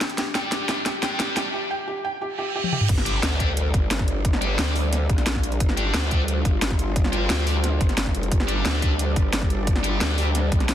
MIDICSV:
0, 0, Header, 1, 8, 480
1, 0, Start_track
1, 0, Tempo, 338983
1, 255, Time_signature, 4, 2, 24, 8
1, 15212, End_track
2, 0, Start_track
2, 0, Title_t, "Felt piano"
2, 0, Program_c, 0, 0
2, 255, Note_on_c, 0, 67, 77
2, 483, Note_off_c, 0, 67, 0
2, 495, Note_on_c, 0, 79, 70
2, 660, Note_off_c, 0, 79, 0
2, 734, Note_on_c, 0, 67, 70
2, 954, Note_off_c, 0, 67, 0
2, 975, Note_on_c, 0, 67, 93
2, 1140, Note_off_c, 0, 67, 0
2, 1215, Note_on_c, 0, 67, 78
2, 1443, Note_off_c, 0, 67, 0
2, 1455, Note_on_c, 0, 79, 72
2, 1620, Note_off_c, 0, 79, 0
2, 1695, Note_on_c, 0, 67, 71
2, 1914, Note_off_c, 0, 67, 0
2, 1935, Note_on_c, 0, 67, 98
2, 2100, Note_off_c, 0, 67, 0
2, 2175, Note_on_c, 0, 67, 82
2, 2403, Note_off_c, 0, 67, 0
2, 2415, Note_on_c, 0, 79, 77
2, 2580, Note_off_c, 0, 79, 0
2, 2655, Note_on_c, 0, 67, 81
2, 2883, Note_off_c, 0, 67, 0
2, 2895, Note_on_c, 0, 79, 78
2, 3060, Note_off_c, 0, 79, 0
2, 3135, Note_on_c, 0, 67, 82
2, 3354, Note_off_c, 0, 67, 0
2, 3375, Note_on_c, 0, 67, 87
2, 3594, Note_off_c, 0, 67, 0
2, 3615, Note_on_c, 0, 67, 85
2, 3834, Note_off_c, 0, 67, 0
2, 3855, Note_on_c, 0, 67, 89
2, 4076, Note_off_c, 0, 67, 0
2, 15212, End_track
3, 0, Start_track
3, 0, Title_t, "Analog synth pad"
3, 0, Program_c, 1, 89
3, 0, Note_on_c, 1, 62, 80
3, 0, Note_on_c, 1, 67, 75
3, 0, Note_on_c, 1, 79, 85
3, 2119, Note_off_c, 1, 62, 0
3, 2119, Note_off_c, 1, 67, 0
3, 2119, Note_off_c, 1, 79, 0
3, 4094, Note_on_c, 1, 55, 82
3, 4094, Note_on_c, 1, 62, 74
3, 4094, Note_on_c, 1, 74, 87
3, 7920, Note_off_c, 1, 74, 0
3, 7934, Note_on_c, 1, 65, 90
3, 11760, Note_off_c, 1, 65, 0
3, 11776, Note_on_c, 1, 74, 91
3, 15212, Note_off_c, 1, 55, 0
3, 15212, Note_off_c, 1, 62, 0
3, 15212, Note_off_c, 1, 74, 0
3, 15212, End_track
4, 0, Start_track
4, 0, Title_t, "Distorted electric guitar"
4, 0, Program_c, 2, 30
4, 490, Note_on_c, 2, 67, 90
4, 497, Note_on_c, 2, 62, 60
4, 502, Note_on_c, 2, 55, 72
4, 946, Note_off_c, 2, 55, 0
4, 946, Note_off_c, 2, 62, 0
4, 946, Note_off_c, 2, 67, 0
4, 969, Note_on_c, 2, 67, 75
4, 978, Note_on_c, 2, 62, 58
4, 984, Note_on_c, 2, 55, 68
4, 1092, Note_off_c, 2, 62, 0
4, 1092, Note_off_c, 2, 67, 0
4, 1093, Note_off_c, 2, 55, 0
4, 1452, Note_on_c, 2, 67, 96
4, 1456, Note_on_c, 2, 62, 72
4, 1463, Note_on_c, 2, 55, 69
4, 1906, Note_off_c, 2, 55, 0
4, 1906, Note_off_c, 2, 62, 0
4, 1906, Note_off_c, 2, 67, 0
4, 1932, Note_on_c, 2, 67, 85
4, 1937, Note_on_c, 2, 62, 60
4, 1944, Note_on_c, 2, 55, 67
4, 2053, Note_off_c, 2, 55, 0
4, 2053, Note_off_c, 2, 62, 0
4, 2053, Note_off_c, 2, 67, 0
4, 4328, Note_on_c, 2, 67, 104
4, 4337, Note_on_c, 2, 62, 74
4, 4342, Note_on_c, 2, 55, 74
4, 4786, Note_off_c, 2, 55, 0
4, 4786, Note_off_c, 2, 62, 0
4, 4786, Note_off_c, 2, 67, 0
4, 4810, Note_on_c, 2, 67, 86
4, 4818, Note_on_c, 2, 62, 70
4, 4825, Note_on_c, 2, 55, 64
4, 4932, Note_off_c, 2, 55, 0
4, 4932, Note_off_c, 2, 62, 0
4, 4932, Note_off_c, 2, 67, 0
4, 6251, Note_on_c, 2, 67, 95
4, 6256, Note_on_c, 2, 62, 75
4, 6263, Note_on_c, 2, 55, 82
4, 6706, Note_off_c, 2, 55, 0
4, 6706, Note_off_c, 2, 62, 0
4, 6706, Note_off_c, 2, 67, 0
4, 8171, Note_on_c, 2, 67, 90
4, 8177, Note_on_c, 2, 62, 82
4, 8183, Note_on_c, 2, 55, 75
4, 8626, Note_off_c, 2, 55, 0
4, 8626, Note_off_c, 2, 62, 0
4, 8626, Note_off_c, 2, 67, 0
4, 8651, Note_on_c, 2, 67, 87
4, 8657, Note_on_c, 2, 62, 70
4, 8664, Note_on_c, 2, 55, 68
4, 8773, Note_off_c, 2, 55, 0
4, 8773, Note_off_c, 2, 62, 0
4, 8773, Note_off_c, 2, 67, 0
4, 10090, Note_on_c, 2, 67, 102
4, 10097, Note_on_c, 2, 62, 73
4, 10104, Note_on_c, 2, 55, 76
4, 10546, Note_off_c, 2, 55, 0
4, 10546, Note_off_c, 2, 62, 0
4, 10546, Note_off_c, 2, 67, 0
4, 10571, Note_on_c, 2, 67, 78
4, 10578, Note_on_c, 2, 62, 59
4, 10587, Note_on_c, 2, 55, 67
4, 10693, Note_off_c, 2, 55, 0
4, 10693, Note_off_c, 2, 62, 0
4, 10693, Note_off_c, 2, 67, 0
4, 12012, Note_on_c, 2, 67, 100
4, 12017, Note_on_c, 2, 62, 67
4, 12024, Note_on_c, 2, 55, 82
4, 12466, Note_off_c, 2, 55, 0
4, 12466, Note_off_c, 2, 62, 0
4, 12466, Note_off_c, 2, 67, 0
4, 12492, Note_on_c, 2, 67, 84
4, 12497, Note_on_c, 2, 62, 60
4, 12503, Note_on_c, 2, 55, 64
4, 12613, Note_off_c, 2, 55, 0
4, 12613, Note_off_c, 2, 62, 0
4, 12613, Note_off_c, 2, 67, 0
4, 13932, Note_on_c, 2, 67, 102
4, 13939, Note_on_c, 2, 62, 75
4, 13942, Note_on_c, 2, 55, 75
4, 14386, Note_off_c, 2, 55, 0
4, 14386, Note_off_c, 2, 62, 0
4, 14386, Note_off_c, 2, 67, 0
4, 14412, Note_on_c, 2, 67, 87
4, 14416, Note_on_c, 2, 62, 63
4, 14424, Note_on_c, 2, 55, 69
4, 14533, Note_off_c, 2, 55, 0
4, 14533, Note_off_c, 2, 62, 0
4, 14533, Note_off_c, 2, 67, 0
4, 15212, End_track
5, 0, Start_track
5, 0, Title_t, "Wobble bass"
5, 0, Program_c, 3, 39
5, 4094, Note_on_c, 3, 31, 94
5, 4556, Note_off_c, 3, 31, 0
5, 4575, Note_on_c, 3, 38, 97
5, 5276, Note_off_c, 3, 38, 0
5, 5294, Note_on_c, 3, 31, 96
5, 6476, Note_off_c, 3, 31, 0
5, 6495, Note_on_c, 3, 38, 99
5, 7196, Note_off_c, 3, 38, 0
5, 7215, Note_on_c, 3, 34, 96
5, 7436, Note_off_c, 3, 34, 0
5, 7455, Note_on_c, 3, 34, 101
5, 7916, Note_off_c, 3, 34, 0
5, 7935, Note_on_c, 3, 31, 94
5, 8396, Note_off_c, 3, 31, 0
5, 8415, Note_on_c, 3, 38, 98
5, 9116, Note_off_c, 3, 38, 0
5, 9135, Note_on_c, 3, 31, 99
5, 10316, Note_off_c, 3, 31, 0
5, 10335, Note_on_c, 3, 38, 100
5, 11036, Note_off_c, 3, 38, 0
5, 11055, Note_on_c, 3, 31, 98
5, 11516, Note_off_c, 3, 31, 0
5, 11536, Note_on_c, 3, 29, 98
5, 11756, Note_off_c, 3, 29, 0
5, 11775, Note_on_c, 3, 31, 92
5, 12236, Note_off_c, 3, 31, 0
5, 12256, Note_on_c, 3, 38, 100
5, 12956, Note_off_c, 3, 38, 0
5, 12975, Note_on_c, 3, 31, 98
5, 14156, Note_off_c, 3, 31, 0
5, 14175, Note_on_c, 3, 38, 98
5, 14876, Note_off_c, 3, 38, 0
5, 14895, Note_on_c, 3, 34, 94
5, 15116, Note_off_c, 3, 34, 0
5, 15135, Note_on_c, 3, 34, 99
5, 15212, Note_off_c, 3, 34, 0
5, 15212, End_track
6, 0, Start_track
6, 0, Title_t, "Impact"
6, 0, Program_c, 4, 103
6, 4094, Note_on_c, 4, 60, 79
6, 6015, Note_off_c, 4, 60, 0
6, 15212, End_track
7, 0, Start_track
7, 0, Title_t, "Reverse cymbal"
7, 0, Program_c, 5, 119
7, 3134, Note_on_c, 5, 60, 80
7, 4095, Note_off_c, 5, 60, 0
7, 15212, End_track
8, 0, Start_track
8, 0, Title_t, "Drums"
8, 15, Note_on_c, 9, 38, 72
8, 15, Note_on_c, 9, 42, 66
8, 135, Note_off_c, 9, 42, 0
8, 135, Note_on_c, 9, 42, 37
8, 157, Note_off_c, 9, 38, 0
8, 255, Note_off_c, 9, 42, 0
8, 255, Note_on_c, 9, 38, 74
8, 255, Note_on_c, 9, 42, 93
8, 397, Note_off_c, 9, 38, 0
8, 397, Note_off_c, 9, 42, 0
8, 495, Note_on_c, 9, 38, 80
8, 495, Note_on_c, 9, 42, 65
8, 637, Note_off_c, 9, 38, 0
8, 637, Note_off_c, 9, 42, 0
8, 734, Note_on_c, 9, 38, 79
8, 734, Note_on_c, 9, 42, 89
8, 876, Note_off_c, 9, 38, 0
8, 876, Note_off_c, 9, 42, 0
8, 974, Note_on_c, 9, 38, 86
8, 974, Note_on_c, 9, 42, 66
8, 1116, Note_off_c, 9, 38, 0
8, 1116, Note_off_c, 9, 42, 0
8, 1215, Note_on_c, 9, 38, 83
8, 1215, Note_on_c, 9, 42, 89
8, 1356, Note_off_c, 9, 38, 0
8, 1356, Note_off_c, 9, 42, 0
8, 1455, Note_on_c, 9, 38, 85
8, 1455, Note_on_c, 9, 42, 63
8, 1596, Note_off_c, 9, 38, 0
8, 1596, Note_off_c, 9, 42, 0
8, 1695, Note_on_c, 9, 38, 94
8, 1695, Note_on_c, 9, 42, 92
8, 1836, Note_off_c, 9, 38, 0
8, 1836, Note_off_c, 9, 42, 0
8, 1935, Note_on_c, 9, 38, 87
8, 1935, Note_on_c, 9, 42, 65
8, 2076, Note_off_c, 9, 38, 0
8, 2076, Note_off_c, 9, 42, 0
8, 3735, Note_on_c, 9, 48, 53
8, 3854, Note_on_c, 9, 47, 78
8, 3876, Note_off_c, 9, 48, 0
8, 3975, Note_on_c, 9, 45, 82
8, 3996, Note_off_c, 9, 47, 0
8, 4094, Note_on_c, 9, 36, 125
8, 4095, Note_on_c, 9, 42, 99
8, 4095, Note_on_c, 9, 49, 103
8, 4116, Note_off_c, 9, 45, 0
8, 4215, Note_on_c, 9, 40, 58
8, 4236, Note_off_c, 9, 36, 0
8, 4237, Note_off_c, 9, 42, 0
8, 4237, Note_off_c, 9, 49, 0
8, 4335, Note_on_c, 9, 42, 72
8, 4356, Note_off_c, 9, 40, 0
8, 4477, Note_off_c, 9, 42, 0
8, 4575, Note_on_c, 9, 38, 121
8, 4575, Note_on_c, 9, 42, 99
8, 4717, Note_off_c, 9, 38, 0
8, 4717, Note_off_c, 9, 42, 0
8, 4814, Note_on_c, 9, 36, 63
8, 4815, Note_on_c, 9, 42, 74
8, 4956, Note_off_c, 9, 36, 0
8, 4957, Note_off_c, 9, 42, 0
8, 5055, Note_on_c, 9, 42, 98
8, 5197, Note_off_c, 9, 42, 0
8, 5294, Note_on_c, 9, 36, 109
8, 5295, Note_on_c, 9, 42, 68
8, 5436, Note_off_c, 9, 36, 0
8, 5437, Note_off_c, 9, 42, 0
8, 5535, Note_on_c, 9, 38, 124
8, 5535, Note_on_c, 9, 42, 101
8, 5654, Note_on_c, 9, 36, 104
8, 5655, Note_on_c, 9, 40, 57
8, 5677, Note_off_c, 9, 38, 0
8, 5677, Note_off_c, 9, 42, 0
8, 5775, Note_on_c, 9, 42, 71
8, 5796, Note_off_c, 9, 36, 0
8, 5797, Note_off_c, 9, 40, 0
8, 5917, Note_off_c, 9, 42, 0
8, 6014, Note_on_c, 9, 36, 127
8, 6015, Note_on_c, 9, 42, 95
8, 6135, Note_on_c, 9, 40, 58
8, 6156, Note_off_c, 9, 36, 0
8, 6157, Note_off_c, 9, 42, 0
8, 6255, Note_on_c, 9, 42, 70
8, 6277, Note_off_c, 9, 40, 0
8, 6397, Note_off_c, 9, 42, 0
8, 6494, Note_on_c, 9, 38, 127
8, 6494, Note_on_c, 9, 42, 95
8, 6636, Note_off_c, 9, 38, 0
8, 6636, Note_off_c, 9, 42, 0
8, 6735, Note_on_c, 9, 46, 79
8, 6877, Note_off_c, 9, 46, 0
8, 6975, Note_on_c, 9, 40, 35
8, 6975, Note_on_c, 9, 42, 97
8, 7117, Note_off_c, 9, 40, 0
8, 7117, Note_off_c, 9, 42, 0
8, 7215, Note_on_c, 9, 36, 107
8, 7215, Note_on_c, 9, 42, 66
8, 7335, Note_off_c, 9, 42, 0
8, 7335, Note_on_c, 9, 40, 35
8, 7335, Note_on_c, 9, 42, 36
8, 7356, Note_off_c, 9, 36, 0
8, 7455, Note_off_c, 9, 42, 0
8, 7455, Note_on_c, 9, 38, 127
8, 7455, Note_on_c, 9, 42, 98
8, 7477, Note_off_c, 9, 40, 0
8, 7575, Note_on_c, 9, 36, 63
8, 7576, Note_on_c, 9, 40, 58
8, 7597, Note_off_c, 9, 38, 0
8, 7597, Note_off_c, 9, 42, 0
8, 7696, Note_on_c, 9, 42, 67
8, 7716, Note_off_c, 9, 36, 0
8, 7717, Note_off_c, 9, 40, 0
8, 7815, Note_off_c, 9, 42, 0
8, 7815, Note_on_c, 9, 42, 37
8, 7935, Note_off_c, 9, 42, 0
8, 7935, Note_on_c, 9, 36, 127
8, 7935, Note_on_c, 9, 42, 91
8, 8056, Note_on_c, 9, 40, 57
8, 8076, Note_off_c, 9, 36, 0
8, 8077, Note_off_c, 9, 42, 0
8, 8175, Note_on_c, 9, 42, 67
8, 8197, Note_off_c, 9, 40, 0
8, 8317, Note_off_c, 9, 42, 0
8, 8415, Note_on_c, 9, 38, 127
8, 8415, Note_on_c, 9, 42, 91
8, 8557, Note_off_c, 9, 38, 0
8, 8557, Note_off_c, 9, 42, 0
8, 8655, Note_on_c, 9, 36, 68
8, 8656, Note_on_c, 9, 42, 68
8, 8796, Note_off_c, 9, 36, 0
8, 8797, Note_off_c, 9, 42, 0
8, 8895, Note_on_c, 9, 42, 91
8, 9037, Note_off_c, 9, 42, 0
8, 9135, Note_on_c, 9, 36, 112
8, 9135, Note_on_c, 9, 42, 65
8, 9276, Note_off_c, 9, 36, 0
8, 9277, Note_off_c, 9, 42, 0
8, 9375, Note_on_c, 9, 38, 127
8, 9375, Note_on_c, 9, 42, 94
8, 9495, Note_on_c, 9, 36, 108
8, 9495, Note_on_c, 9, 40, 57
8, 9517, Note_off_c, 9, 38, 0
8, 9517, Note_off_c, 9, 42, 0
8, 9615, Note_on_c, 9, 42, 66
8, 9636, Note_off_c, 9, 36, 0
8, 9636, Note_off_c, 9, 40, 0
8, 9757, Note_off_c, 9, 42, 0
8, 9855, Note_on_c, 9, 36, 127
8, 9855, Note_on_c, 9, 42, 89
8, 9975, Note_on_c, 9, 40, 54
8, 9996, Note_off_c, 9, 36, 0
8, 9997, Note_off_c, 9, 42, 0
8, 10094, Note_on_c, 9, 42, 64
8, 10116, Note_off_c, 9, 40, 0
8, 10236, Note_off_c, 9, 42, 0
8, 10334, Note_on_c, 9, 38, 121
8, 10334, Note_on_c, 9, 42, 89
8, 10476, Note_off_c, 9, 38, 0
8, 10476, Note_off_c, 9, 42, 0
8, 10575, Note_on_c, 9, 46, 86
8, 10716, Note_off_c, 9, 46, 0
8, 10815, Note_on_c, 9, 40, 32
8, 10815, Note_on_c, 9, 42, 87
8, 10956, Note_off_c, 9, 40, 0
8, 10956, Note_off_c, 9, 42, 0
8, 11055, Note_on_c, 9, 36, 112
8, 11055, Note_on_c, 9, 42, 64
8, 11175, Note_off_c, 9, 42, 0
8, 11175, Note_on_c, 9, 40, 33
8, 11175, Note_on_c, 9, 42, 35
8, 11196, Note_off_c, 9, 36, 0
8, 11294, Note_off_c, 9, 42, 0
8, 11294, Note_on_c, 9, 38, 127
8, 11294, Note_on_c, 9, 42, 90
8, 11316, Note_off_c, 9, 40, 0
8, 11415, Note_on_c, 9, 36, 62
8, 11415, Note_on_c, 9, 40, 53
8, 11436, Note_off_c, 9, 38, 0
8, 11436, Note_off_c, 9, 42, 0
8, 11535, Note_on_c, 9, 42, 62
8, 11556, Note_off_c, 9, 36, 0
8, 11556, Note_off_c, 9, 40, 0
8, 11655, Note_off_c, 9, 42, 0
8, 11655, Note_on_c, 9, 42, 35
8, 11775, Note_off_c, 9, 42, 0
8, 11775, Note_on_c, 9, 36, 124
8, 11775, Note_on_c, 9, 42, 91
8, 11895, Note_on_c, 9, 40, 52
8, 11916, Note_off_c, 9, 36, 0
8, 11916, Note_off_c, 9, 42, 0
8, 12015, Note_on_c, 9, 42, 63
8, 12036, Note_off_c, 9, 40, 0
8, 12156, Note_off_c, 9, 42, 0
8, 12255, Note_on_c, 9, 38, 121
8, 12255, Note_on_c, 9, 42, 88
8, 12396, Note_off_c, 9, 38, 0
8, 12396, Note_off_c, 9, 42, 0
8, 12495, Note_on_c, 9, 36, 65
8, 12495, Note_on_c, 9, 42, 69
8, 12636, Note_off_c, 9, 36, 0
8, 12636, Note_off_c, 9, 42, 0
8, 12735, Note_on_c, 9, 42, 89
8, 12876, Note_off_c, 9, 42, 0
8, 12975, Note_on_c, 9, 36, 110
8, 12975, Note_on_c, 9, 42, 62
8, 13117, Note_off_c, 9, 36, 0
8, 13117, Note_off_c, 9, 42, 0
8, 13215, Note_on_c, 9, 38, 126
8, 13215, Note_on_c, 9, 42, 91
8, 13335, Note_on_c, 9, 36, 109
8, 13335, Note_on_c, 9, 40, 53
8, 13357, Note_off_c, 9, 38, 0
8, 13357, Note_off_c, 9, 42, 0
8, 13455, Note_on_c, 9, 42, 64
8, 13476, Note_off_c, 9, 36, 0
8, 13477, Note_off_c, 9, 40, 0
8, 13597, Note_off_c, 9, 42, 0
8, 13695, Note_on_c, 9, 36, 124
8, 13695, Note_on_c, 9, 42, 92
8, 13815, Note_on_c, 9, 40, 53
8, 13836, Note_off_c, 9, 36, 0
8, 13837, Note_off_c, 9, 42, 0
8, 13935, Note_on_c, 9, 42, 68
8, 13957, Note_off_c, 9, 40, 0
8, 14076, Note_off_c, 9, 42, 0
8, 14175, Note_on_c, 9, 38, 115
8, 14175, Note_on_c, 9, 42, 93
8, 14316, Note_off_c, 9, 38, 0
8, 14316, Note_off_c, 9, 42, 0
8, 14415, Note_on_c, 9, 46, 85
8, 14556, Note_off_c, 9, 46, 0
8, 14655, Note_on_c, 9, 40, 32
8, 14655, Note_on_c, 9, 42, 90
8, 14796, Note_off_c, 9, 40, 0
8, 14796, Note_off_c, 9, 42, 0
8, 14895, Note_on_c, 9, 36, 103
8, 14895, Note_on_c, 9, 42, 65
8, 15015, Note_off_c, 9, 42, 0
8, 15015, Note_on_c, 9, 40, 31
8, 15015, Note_on_c, 9, 42, 35
8, 15037, Note_off_c, 9, 36, 0
8, 15135, Note_off_c, 9, 42, 0
8, 15135, Note_on_c, 9, 38, 122
8, 15135, Note_on_c, 9, 42, 96
8, 15157, Note_off_c, 9, 40, 0
8, 15212, Note_off_c, 9, 38, 0
8, 15212, Note_off_c, 9, 42, 0
8, 15212, End_track
0, 0, End_of_file